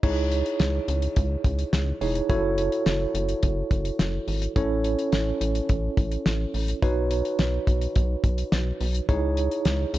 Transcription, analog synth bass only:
0.03 0.43 C#2 loud
0.60 0.80 C#2 loud
0.88 1.08 C#2 loud
1.17 1.36 C#2 loud
1.44 1.64 C#2 loud
1.73 1.93 C#2 loud
2.01 2.21 E1 loud
2.30 2.69 F#1 loud
2.86 3.06 F#1 loud
3.14 3.34 F#1 loud
3.43 3.63 F#1 loud
3.71 3.91 F#1 loud
3.99 4.19 F#1 loud
4.28 4.48 G#1 loud
4.56 4.96 A1 loud
5.13 5.32 A1 loud
5.41 5.61 A1 loud
5.70 5.89 A1 loud
5.97 6.17 A1 loud
6.26 6.46 A1 loud
6.54 6.74 A1 medium
6.82 7.22 B1 loud
7.39 7.59 B1 loud
7.67 7.87 B1 loud
7.96 8.16 B1 loud
8.24 8.44 B1 loud
8.52 8.72 B1 loud
8.81 9.00 B1 loud
9.09 9.48 C#2 loud
9.65 9.85 C#2 loud
9.94 9.98 C#2 loud

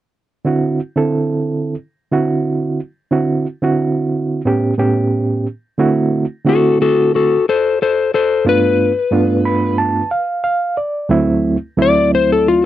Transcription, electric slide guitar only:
6.49 6.81 F#4 medium
6.49 6.80 A4 medium
6.82 7.12 F#4 medium
6.82 7.13 A4 medium
7.15 7.45 F#4 medium
7.15 7.47 A4 medium
7.49 7.79 A4 medium
7.49 7.80 C5 medium
7.82 8.12 A4 medium
7.82 8.13 C5 medium
8.14 8.45 A4 medium
8.14 8.46 C5 medium
8.49 9.77 B4 medium
11.82 12.13 D5 medium
12.15 12.30 C5 medium
12.32 12.47 A4 medium
12.48 12.64 F4 medium

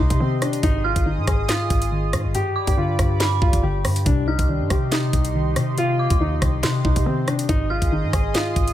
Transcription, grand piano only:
0.00 0.18 D#4 medium
0.20 0.40 C4 medium
0.42 0.61 D4 medium
0.63 0.83 D#4 loud
0.84 1.04 F4 medium
1.06 1.25 D#4 medium
1.28 1.47 G#4 medium
1.49 2.31 F4 medium
2.35 2.66 G4 medium
2.67 2.77 G4 medium
2.77 3.38 F4 medium
3.41 3.61 F4 medium
3.63 4.03 G4 medium
4.06 4.25 D4 loud
4.27 4.47 D#4 medium
4.49 4.68 D4 medium
4.70 4.90 G4 medium
4.92 5.74 D#4 medium
5.78 6.09 F4 loud
6.10 6.19 F4 medium
6.21 6.81 D#4 medium
6.85 7.04 D#4 medium
7.06 7.26 C4 medium
7.28 7.47 D4 medium
7.49 7.68 D#4 loud
7.70 7.90 F4 medium
7.92 8.11 D#4 medium
8.13 8.33 G#4 medium
8.35 8.73 F4 medium

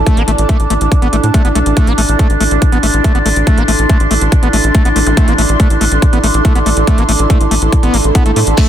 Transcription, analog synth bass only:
0.17 0.24 A1 medium
0.28 0.35 A1 loud
0.38 0.46 A1 medium
0.60 0.67 A1 medium
0.70 0.78 A1 medium
0.81 0.88 A1 medium
1.02 1.09 A1 medium
1.13 1.20 A1 medium
1.23 1.31 A2 medium
1.45 1.52 A1 medium
1.55 1.63 B1 loud
1.66 1.73 A1 medium
1.87 1.95 A1 medium
1.98 2.05 A1 loud
2.09 2.16 A1 medium
2.30 2.37 A1 medium
2.41 2.48 A1 medium
2.51 2.58 A1 medium
2.72 2.80 A1 medium
2.83 2.90 A1 loud
2.94 3.01 A1 medium
3.15 3.22 A1 medium
3.26 3.33 A1 loud
3.36 3.43 A1 medium
3.58 3.65 A1 medium
3.68 3.75 A1 loud
3.79 3.86 A1 medium
4.00 4.07 A1 medium
4.11 4.18 A1 medium
4.21 4.29 A1 loud
4.43 4.50 A1 medium
4.53 4.60 A1 loud
4.64 4.71 A1 medium
4.85 4.92 A1 medium
4.96 5.03 A1 loud
5.06 5.14 A1 medium
5.28 5.35 A1 medium
5.38 5.46 A1 loud
5.49 5.56 A1 medium
5.70 5.78 A1 medium
5.81 5.88 A1 loud
5.92 5.99 A1 medium
6.13 6.20 A1 medium
6.23 6.31 A1 loud
6.34 6.41 A1 medium
6.55 6.63 A1 medium
6.66 6.73 A1 loud
6.77 6.84 A1 medium
6.98 7.05 A1 medium
7.09 7.16 A1 loud
7.19 7.26 A1 medium
7.41 7.48 A1 medium
7.51 7.58 A1 medium
7.62 7.69 A1 medium
7.83 7.90 A1 medium
7.94 8.01 A1 loud
8.04 8.12 A1 medium
8.26 8.33 A1 medium
8.36 8.43 A2 loud
8.47 8.54 A1 medium

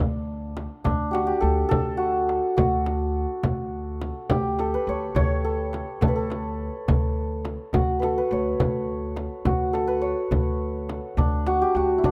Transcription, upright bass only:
0.00 0.66 D2 medium
0.85 1.30 D2 medium
1.42 1.64 D2 medium
1.71 2.38 D2 medium
2.58 3.24 D2 medium
3.44 4.10 D2 medium
4.30 4.74 D2 medium
4.87 5.09 D2 medium
5.15 5.82 D2 medium
6.01 6.68 D2 medium
6.88 7.55 D2 medium
7.75 8.19 D2 medium
8.31 8.53 D2 medium
8.60 9.26 D2 medium
9.45 10.12 D2 medium
10.31 10.98 D2 medium
11.17 11.62 D2 medium
11.75 11.97 D2 medium
12.04 12.11 D2 medium

